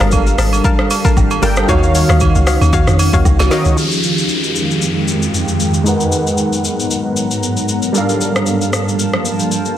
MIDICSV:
0, 0, Header, 1, 7, 480
1, 0, Start_track
1, 0, Tempo, 521739
1, 1554, Time_signature, 4, 2, 24, 8
1, 8994, End_track
2, 0, Start_track
2, 0, Title_t, "Synth pluck"
2, 0, Program_c, 0, 84
2, 3, Note_on_c, 0, 70, 83
2, 6, Note_on_c, 0, 77, 73
2, 9, Note_on_c, 0, 81, 85
2, 92, Note_off_c, 0, 70, 0
2, 94, Note_off_c, 0, 77, 0
2, 95, Note_off_c, 0, 81, 0
2, 353, Note_on_c, 0, 70, 77
2, 356, Note_on_c, 0, 77, 73
2, 359, Note_on_c, 0, 81, 86
2, 461, Note_off_c, 0, 70, 0
2, 462, Note_off_c, 0, 77, 0
2, 463, Note_off_c, 0, 81, 0
2, 593, Note_on_c, 0, 70, 102
2, 597, Note_on_c, 0, 77, 88
2, 599, Note_on_c, 0, 81, 106
2, 934, Note_off_c, 0, 70, 0
2, 935, Note_off_c, 0, 77, 0
2, 936, Note_off_c, 0, 81, 0
2, 963, Note_on_c, 0, 70, 80
2, 966, Note_on_c, 0, 77, 72
2, 969, Note_on_c, 0, 81, 86
2, 1052, Note_off_c, 0, 70, 0
2, 1053, Note_off_c, 0, 77, 0
2, 1055, Note_off_c, 0, 81, 0
2, 1311, Note_on_c, 0, 70, 83
2, 1313, Note_on_c, 0, 77, 74
2, 1316, Note_on_c, 0, 81, 84
2, 1420, Note_off_c, 0, 70, 0
2, 1421, Note_off_c, 0, 77, 0
2, 1422, Note_off_c, 0, 81, 0
2, 1550, Note_on_c, 0, 66, 99
2, 1553, Note_on_c, 0, 73, 90
2, 1555, Note_on_c, 0, 77, 110
2, 1892, Note_off_c, 0, 66, 0
2, 1893, Note_off_c, 0, 73, 0
2, 1895, Note_off_c, 0, 77, 0
2, 1923, Note_on_c, 0, 66, 83
2, 1926, Note_on_c, 0, 73, 75
2, 1928, Note_on_c, 0, 77, 91
2, 2012, Note_off_c, 0, 66, 0
2, 2013, Note_off_c, 0, 73, 0
2, 2015, Note_off_c, 0, 77, 0
2, 2270, Note_on_c, 0, 66, 78
2, 2273, Note_on_c, 0, 73, 72
2, 2277, Note_on_c, 0, 77, 86
2, 2379, Note_off_c, 0, 66, 0
2, 2381, Note_off_c, 0, 73, 0
2, 2382, Note_off_c, 0, 77, 0
2, 2511, Note_on_c, 0, 66, 101
2, 2514, Note_on_c, 0, 73, 93
2, 2517, Note_on_c, 0, 77, 106
2, 2853, Note_off_c, 0, 66, 0
2, 2854, Note_off_c, 0, 73, 0
2, 2855, Note_off_c, 0, 77, 0
2, 2884, Note_on_c, 0, 66, 82
2, 2886, Note_on_c, 0, 73, 74
2, 2888, Note_on_c, 0, 77, 87
2, 2973, Note_off_c, 0, 66, 0
2, 2974, Note_off_c, 0, 73, 0
2, 2975, Note_off_c, 0, 77, 0
2, 3231, Note_on_c, 0, 66, 80
2, 3234, Note_on_c, 0, 73, 74
2, 3237, Note_on_c, 0, 77, 88
2, 3339, Note_off_c, 0, 66, 0
2, 3341, Note_off_c, 0, 73, 0
2, 3342, Note_off_c, 0, 77, 0
2, 8994, End_track
3, 0, Start_track
3, 0, Title_t, "Synth keys"
3, 0, Program_c, 1, 88
3, 0, Control_c, 1, 64, 127
3, 0, Note_on_c, 1, 55, 87
3, 0, Note_on_c, 1, 62, 81
3, 0, Note_on_c, 1, 69, 81
3, 0, Note_on_c, 1, 70, 81
3, 0, Note_on_c, 1, 77, 97
3, 402, Note_off_c, 1, 55, 0
3, 405, Note_off_c, 1, 62, 0
3, 407, Note_off_c, 1, 69, 0
3, 410, Note_off_c, 1, 70, 0
3, 413, Note_off_c, 1, 77, 0
3, 1305, Note_on_c, 1, 55, 86
3, 1311, Note_on_c, 1, 62, 80
3, 1317, Note_on_c, 1, 69, 78
3, 1322, Note_on_c, 1, 70, 81
3, 1328, Note_on_c, 1, 79, 98
3, 1506, Note_off_c, 1, 55, 0
3, 1509, Note_off_c, 1, 62, 0
3, 1512, Note_off_c, 1, 69, 0
3, 1515, Note_off_c, 1, 70, 0
3, 1518, Note_off_c, 1, 79, 0
3, 1545, Note_on_c, 1, 51, 87
3, 1550, Note_on_c, 1, 63, 78
3, 1556, Note_on_c, 1, 66, 78
3, 1562, Note_on_c, 1, 73, 78
3, 1565, Control_c, 1, 64, 0
3, 1568, Note_on_c, 1, 77, 97
3, 1715, Control_c, 1, 64, 127
3, 2322, Note_off_c, 1, 51, 0
3, 2325, Note_off_c, 1, 63, 0
3, 2327, Note_off_c, 1, 66, 0
3, 2331, Note_off_c, 1, 73, 0
3, 2334, Note_off_c, 1, 77, 0
3, 3224, Note_on_c, 1, 51, 87
3, 3229, Note_on_c, 1, 63, 83
3, 3235, Note_on_c, 1, 66, 79
3, 3241, Note_on_c, 1, 73, 80
3, 3246, Note_on_c, 1, 75, 96
3, 3425, Note_off_c, 1, 51, 0
3, 3428, Note_off_c, 1, 63, 0
3, 3431, Note_off_c, 1, 66, 0
3, 3434, Note_off_c, 1, 73, 0
3, 3436, Note_off_c, 1, 75, 0
3, 3452, Note_on_c, 1, 53, 71
3, 3462, Note_on_c, 1, 63, 63
3, 3474, Note_on_c, 1, 67, 63
3, 3485, Control_c, 1, 64, 0
3, 3485, Note_on_c, 1, 68, 66
3, 3627, Control_c, 1, 64, 127
3, 5346, Note_off_c, 1, 53, 0
3, 5351, Note_off_c, 1, 63, 0
3, 5357, Note_off_c, 1, 67, 0
3, 5362, Note_off_c, 1, 68, 0
3, 5372, Note_on_c, 1, 56, 73
3, 5383, Note_on_c, 1, 63, 65
3, 5395, Note_on_c, 1, 70, 67
3, 5403, Control_c, 1, 64, 0
3, 5406, Note_on_c, 1, 71, 63
3, 5417, Note_on_c, 1, 78, 77
3, 5570, Control_c, 1, 64, 127
3, 7266, Note_off_c, 1, 56, 0
3, 7271, Note_off_c, 1, 63, 0
3, 7277, Note_off_c, 1, 70, 0
3, 7283, Note_off_c, 1, 71, 0
3, 7288, Note_off_c, 1, 78, 0
3, 7293, Note_on_c, 1, 55, 73
3, 7304, Note_on_c, 1, 62, 67
3, 7316, Note_on_c, 1, 69, 66
3, 7326, Control_c, 1, 64, 0
3, 7328, Note_on_c, 1, 70, 68
3, 7339, Note_on_c, 1, 77, 78
3, 7474, Control_c, 1, 64, 127
3, 8994, Note_off_c, 1, 55, 0
3, 8994, Note_off_c, 1, 62, 0
3, 8994, Note_off_c, 1, 69, 0
3, 8994, Note_off_c, 1, 70, 0
3, 8994, Note_off_c, 1, 77, 0
3, 8994, End_track
4, 0, Start_track
4, 0, Title_t, "Ambient pad"
4, 0, Program_c, 2, 92
4, 0, Note_on_c, 2, 55, 83
4, 0, Note_on_c, 2, 77, 76
4, 0, Note_on_c, 2, 81, 82
4, 1534, Note_off_c, 2, 81, 0
4, 1535, Note_off_c, 2, 55, 0
4, 1554, Note_on_c, 2, 61, 82
4, 1555, Note_on_c, 2, 66, 93
4, 1556, Note_on_c, 2, 51, 87
4, 3437, Note_off_c, 2, 77, 0
4, 3455, Note_off_c, 2, 61, 0
4, 3455, Note_off_c, 2, 66, 0
4, 3456, Note_off_c, 2, 51, 0
4, 3470, Note_on_c, 2, 79, 93
4, 3471, Note_on_c, 2, 51, 73
4, 3472, Note_on_c, 2, 56, 74
4, 3473, Note_on_c, 2, 41, 81
4, 5372, Note_off_c, 2, 79, 0
4, 5373, Note_off_c, 2, 51, 0
4, 5373, Note_off_c, 2, 56, 0
4, 5374, Note_off_c, 2, 41, 0
4, 5391, Note_on_c, 2, 54, 73
4, 5392, Note_on_c, 2, 44, 82
4, 5392, Note_on_c, 2, 82, 90
4, 5394, Note_on_c, 2, 59, 74
4, 7293, Note_off_c, 2, 54, 0
4, 7293, Note_off_c, 2, 82, 0
4, 7294, Note_off_c, 2, 44, 0
4, 7295, Note_off_c, 2, 59, 0
4, 7313, Note_on_c, 2, 81, 88
4, 7314, Note_on_c, 2, 53, 76
4, 7315, Note_on_c, 2, 43, 77
4, 7316, Note_on_c, 2, 58, 75
4, 8994, Note_off_c, 2, 43, 0
4, 8994, Note_off_c, 2, 53, 0
4, 8994, Note_off_c, 2, 58, 0
4, 8994, Note_off_c, 2, 81, 0
4, 8994, End_track
5, 0, Start_track
5, 0, Title_t, "Log drum bass"
5, 0, Program_c, 3, 39
5, 6, Note_on_c, 3, 31, 104
5, 303, Note_off_c, 3, 31, 0
5, 351, Note_on_c, 3, 32, 99
5, 558, Note_off_c, 3, 32, 0
5, 1075, Note_on_c, 3, 32, 97
5, 1279, Note_off_c, 3, 32, 0
5, 1312, Note_on_c, 3, 31, 88
5, 1518, Note_off_c, 3, 31, 0
5, 1553, Note_on_c, 3, 39, 118
5, 1872, Note_off_c, 3, 39, 0
5, 1926, Note_on_c, 3, 39, 99
5, 2131, Note_off_c, 3, 39, 0
5, 2166, Note_on_c, 3, 37, 93
5, 2371, Note_off_c, 3, 37, 0
5, 2404, Note_on_c, 3, 39, 96
5, 2497, Note_off_c, 3, 39, 0
5, 2511, Note_on_c, 3, 39, 93
5, 2625, Note_off_c, 3, 39, 0
5, 2643, Note_on_c, 3, 41, 95
5, 2850, Note_off_c, 3, 41, 0
5, 2883, Note_on_c, 3, 39, 95
5, 2976, Note_off_c, 3, 39, 0
5, 2993, Note_on_c, 3, 37, 97
5, 3106, Note_off_c, 3, 37, 0
5, 3121, Note_on_c, 3, 36, 96
5, 3216, Note_off_c, 3, 36, 0
5, 3363, Note_on_c, 3, 37, 89
5, 3456, Note_off_c, 3, 37, 0
5, 8994, End_track
6, 0, Start_track
6, 0, Title_t, "Downlifter"
6, 0, Program_c, 4, 103
6, 3474, Note_on_c, 4, 60, 78
6, 7313, Note_off_c, 4, 60, 0
6, 8994, End_track
7, 0, Start_track
7, 0, Title_t, "Drums"
7, 9, Note_on_c, 9, 82, 53
7, 10, Note_on_c, 9, 37, 94
7, 101, Note_off_c, 9, 82, 0
7, 102, Note_off_c, 9, 37, 0
7, 107, Note_on_c, 9, 82, 81
7, 116, Note_on_c, 9, 36, 101
7, 116, Note_on_c, 9, 67, 71
7, 199, Note_off_c, 9, 82, 0
7, 208, Note_off_c, 9, 36, 0
7, 208, Note_off_c, 9, 67, 0
7, 246, Note_on_c, 9, 82, 54
7, 338, Note_off_c, 9, 82, 0
7, 354, Note_on_c, 9, 37, 102
7, 355, Note_on_c, 9, 46, 60
7, 355, Note_on_c, 9, 82, 102
7, 446, Note_off_c, 9, 37, 0
7, 447, Note_off_c, 9, 46, 0
7, 447, Note_off_c, 9, 82, 0
7, 485, Note_on_c, 9, 67, 78
7, 495, Note_on_c, 9, 82, 53
7, 577, Note_off_c, 9, 67, 0
7, 587, Note_off_c, 9, 82, 0
7, 592, Note_on_c, 9, 36, 126
7, 593, Note_on_c, 9, 82, 88
7, 684, Note_off_c, 9, 36, 0
7, 685, Note_off_c, 9, 82, 0
7, 725, Note_on_c, 9, 37, 91
7, 817, Note_off_c, 9, 37, 0
7, 833, Note_on_c, 9, 46, 58
7, 833, Note_on_c, 9, 82, 96
7, 834, Note_on_c, 9, 67, 80
7, 925, Note_off_c, 9, 46, 0
7, 925, Note_off_c, 9, 82, 0
7, 926, Note_off_c, 9, 67, 0
7, 963, Note_on_c, 9, 36, 104
7, 965, Note_on_c, 9, 82, 61
7, 1055, Note_off_c, 9, 36, 0
7, 1057, Note_off_c, 9, 82, 0
7, 1074, Note_on_c, 9, 36, 100
7, 1074, Note_on_c, 9, 77, 67
7, 1076, Note_on_c, 9, 82, 75
7, 1166, Note_off_c, 9, 36, 0
7, 1166, Note_off_c, 9, 77, 0
7, 1168, Note_off_c, 9, 82, 0
7, 1203, Note_on_c, 9, 82, 49
7, 1205, Note_on_c, 9, 67, 79
7, 1295, Note_off_c, 9, 82, 0
7, 1297, Note_off_c, 9, 67, 0
7, 1312, Note_on_c, 9, 46, 49
7, 1312, Note_on_c, 9, 82, 82
7, 1404, Note_off_c, 9, 46, 0
7, 1404, Note_off_c, 9, 82, 0
7, 1439, Note_on_c, 9, 82, 57
7, 1447, Note_on_c, 9, 37, 104
7, 1531, Note_off_c, 9, 82, 0
7, 1539, Note_off_c, 9, 37, 0
7, 1552, Note_on_c, 9, 82, 83
7, 1554, Note_on_c, 9, 36, 121
7, 1555, Note_on_c, 9, 67, 69
7, 1644, Note_off_c, 9, 82, 0
7, 1646, Note_off_c, 9, 36, 0
7, 1647, Note_off_c, 9, 67, 0
7, 1685, Note_on_c, 9, 82, 60
7, 1777, Note_off_c, 9, 82, 0
7, 1793, Note_on_c, 9, 46, 61
7, 1793, Note_on_c, 9, 82, 97
7, 1885, Note_off_c, 9, 46, 0
7, 1885, Note_off_c, 9, 82, 0
7, 1929, Note_on_c, 9, 82, 56
7, 1930, Note_on_c, 9, 37, 90
7, 2021, Note_off_c, 9, 82, 0
7, 2022, Note_off_c, 9, 37, 0
7, 2026, Note_on_c, 9, 82, 80
7, 2034, Note_on_c, 9, 67, 75
7, 2035, Note_on_c, 9, 36, 98
7, 2118, Note_off_c, 9, 82, 0
7, 2126, Note_off_c, 9, 67, 0
7, 2127, Note_off_c, 9, 36, 0
7, 2164, Note_on_c, 9, 82, 53
7, 2256, Note_off_c, 9, 82, 0
7, 2271, Note_on_c, 9, 37, 96
7, 2272, Note_on_c, 9, 46, 60
7, 2272, Note_on_c, 9, 82, 101
7, 2363, Note_off_c, 9, 37, 0
7, 2364, Note_off_c, 9, 46, 0
7, 2364, Note_off_c, 9, 82, 0
7, 2405, Note_on_c, 9, 67, 80
7, 2412, Note_on_c, 9, 82, 53
7, 2497, Note_off_c, 9, 67, 0
7, 2504, Note_off_c, 9, 82, 0
7, 2511, Note_on_c, 9, 36, 123
7, 2513, Note_on_c, 9, 82, 92
7, 2603, Note_off_c, 9, 36, 0
7, 2605, Note_off_c, 9, 82, 0
7, 2644, Note_on_c, 9, 37, 90
7, 2646, Note_on_c, 9, 82, 64
7, 2736, Note_off_c, 9, 37, 0
7, 2738, Note_off_c, 9, 82, 0
7, 2753, Note_on_c, 9, 46, 59
7, 2753, Note_on_c, 9, 67, 77
7, 2753, Note_on_c, 9, 82, 91
7, 2845, Note_off_c, 9, 46, 0
7, 2845, Note_off_c, 9, 67, 0
7, 2845, Note_off_c, 9, 82, 0
7, 2882, Note_on_c, 9, 36, 104
7, 2883, Note_on_c, 9, 82, 59
7, 2974, Note_off_c, 9, 36, 0
7, 2975, Note_off_c, 9, 82, 0
7, 2992, Note_on_c, 9, 77, 70
7, 2993, Note_on_c, 9, 36, 98
7, 2996, Note_on_c, 9, 82, 80
7, 3084, Note_off_c, 9, 77, 0
7, 3085, Note_off_c, 9, 36, 0
7, 3088, Note_off_c, 9, 82, 0
7, 3122, Note_on_c, 9, 82, 49
7, 3123, Note_on_c, 9, 67, 81
7, 3128, Note_on_c, 9, 38, 67
7, 3214, Note_off_c, 9, 82, 0
7, 3215, Note_off_c, 9, 67, 0
7, 3220, Note_off_c, 9, 38, 0
7, 3231, Note_on_c, 9, 37, 95
7, 3231, Note_on_c, 9, 38, 69
7, 3231, Note_on_c, 9, 46, 48
7, 3231, Note_on_c, 9, 82, 84
7, 3323, Note_off_c, 9, 37, 0
7, 3323, Note_off_c, 9, 38, 0
7, 3323, Note_off_c, 9, 46, 0
7, 3323, Note_off_c, 9, 82, 0
7, 3359, Note_on_c, 9, 82, 55
7, 3451, Note_off_c, 9, 82, 0
7, 3473, Note_on_c, 9, 82, 73
7, 3565, Note_off_c, 9, 82, 0
7, 3604, Note_on_c, 9, 82, 54
7, 3696, Note_off_c, 9, 82, 0
7, 3712, Note_on_c, 9, 82, 91
7, 3804, Note_off_c, 9, 82, 0
7, 3848, Note_on_c, 9, 82, 49
7, 3940, Note_off_c, 9, 82, 0
7, 3945, Note_on_c, 9, 82, 73
7, 4037, Note_off_c, 9, 82, 0
7, 4083, Note_on_c, 9, 82, 45
7, 4175, Note_off_c, 9, 82, 0
7, 4193, Note_on_c, 9, 82, 93
7, 4285, Note_off_c, 9, 82, 0
7, 4333, Note_on_c, 9, 82, 48
7, 4425, Note_off_c, 9, 82, 0
7, 4434, Note_on_c, 9, 82, 80
7, 4526, Note_off_c, 9, 82, 0
7, 4674, Note_on_c, 9, 82, 88
7, 4766, Note_off_c, 9, 82, 0
7, 4806, Note_on_c, 9, 82, 53
7, 4898, Note_off_c, 9, 82, 0
7, 4917, Note_on_c, 9, 82, 71
7, 5009, Note_off_c, 9, 82, 0
7, 5043, Note_on_c, 9, 82, 44
7, 5135, Note_off_c, 9, 82, 0
7, 5153, Note_on_c, 9, 82, 76
7, 5245, Note_off_c, 9, 82, 0
7, 5279, Note_on_c, 9, 82, 50
7, 5371, Note_off_c, 9, 82, 0
7, 5394, Note_on_c, 9, 82, 72
7, 5486, Note_off_c, 9, 82, 0
7, 5525, Note_on_c, 9, 82, 52
7, 5617, Note_off_c, 9, 82, 0
7, 5632, Note_on_c, 9, 82, 95
7, 5724, Note_off_c, 9, 82, 0
7, 5768, Note_on_c, 9, 82, 47
7, 5860, Note_off_c, 9, 82, 0
7, 5867, Note_on_c, 9, 82, 74
7, 5959, Note_off_c, 9, 82, 0
7, 6006, Note_on_c, 9, 82, 48
7, 6098, Note_off_c, 9, 82, 0
7, 6115, Note_on_c, 9, 82, 93
7, 6207, Note_off_c, 9, 82, 0
7, 6254, Note_on_c, 9, 82, 50
7, 6346, Note_off_c, 9, 82, 0
7, 6356, Note_on_c, 9, 82, 82
7, 6448, Note_off_c, 9, 82, 0
7, 6593, Note_on_c, 9, 82, 83
7, 6685, Note_off_c, 9, 82, 0
7, 6726, Note_on_c, 9, 82, 57
7, 6818, Note_off_c, 9, 82, 0
7, 6838, Note_on_c, 9, 82, 71
7, 6930, Note_off_c, 9, 82, 0
7, 6963, Note_on_c, 9, 82, 43
7, 7055, Note_off_c, 9, 82, 0
7, 7072, Note_on_c, 9, 82, 77
7, 7164, Note_off_c, 9, 82, 0
7, 7199, Note_on_c, 9, 82, 53
7, 7291, Note_off_c, 9, 82, 0
7, 7313, Note_on_c, 9, 82, 75
7, 7405, Note_off_c, 9, 82, 0
7, 7446, Note_on_c, 9, 82, 55
7, 7538, Note_off_c, 9, 82, 0
7, 7554, Note_on_c, 9, 82, 91
7, 7646, Note_off_c, 9, 82, 0
7, 7690, Note_on_c, 9, 37, 85
7, 7690, Note_on_c, 9, 82, 50
7, 7782, Note_off_c, 9, 37, 0
7, 7782, Note_off_c, 9, 82, 0
7, 7787, Note_on_c, 9, 82, 78
7, 7879, Note_off_c, 9, 82, 0
7, 7926, Note_on_c, 9, 82, 48
7, 8018, Note_off_c, 9, 82, 0
7, 8033, Note_on_c, 9, 37, 90
7, 8034, Note_on_c, 9, 82, 98
7, 8125, Note_off_c, 9, 37, 0
7, 8126, Note_off_c, 9, 82, 0
7, 8174, Note_on_c, 9, 82, 49
7, 8266, Note_off_c, 9, 82, 0
7, 8274, Note_on_c, 9, 82, 80
7, 8366, Note_off_c, 9, 82, 0
7, 8404, Note_on_c, 9, 37, 82
7, 8496, Note_off_c, 9, 37, 0
7, 8513, Note_on_c, 9, 82, 89
7, 8605, Note_off_c, 9, 82, 0
7, 8644, Note_on_c, 9, 82, 56
7, 8736, Note_off_c, 9, 82, 0
7, 8755, Note_on_c, 9, 82, 72
7, 8847, Note_off_c, 9, 82, 0
7, 8881, Note_on_c, 9, 82, 48
7, 8973, Note_off_c, 9, 82, 0
7, 8994, End_track
0, 0, End_of_file